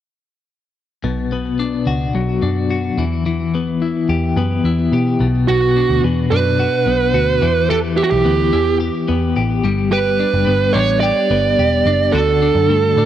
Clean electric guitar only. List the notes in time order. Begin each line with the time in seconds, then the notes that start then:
1.04 B2
1.32 B3
1.59 D4
1.87 F#4
2.15 F#3
2.42 D4
2.71 F#4
2.98 E3
3.26 E3
3.55 B3
3.82 E4
4.09 G4
4.37 B3
4.65 E4
4.93 G4
5.20 B2
5.48 B2 F#4
5.76 D4
6.04 B3
6.32 D4
6.59 F#4
6.87 B3
7.14 F#4
7.42 E3
7.70 E3 G4
7.98 E4
8.25 B3
8.53 E4
8.80 G4
9.09 B3
9.36 G4
9.64 G3
9.92 G3 G4
10.20 D4
10.47 B3
10.75 D4
11.03 G4
11.31 B3
11.59 G4
11.87 D4
12.14 D3 F#4
12.42 D4
12.70 A3
12.98 D4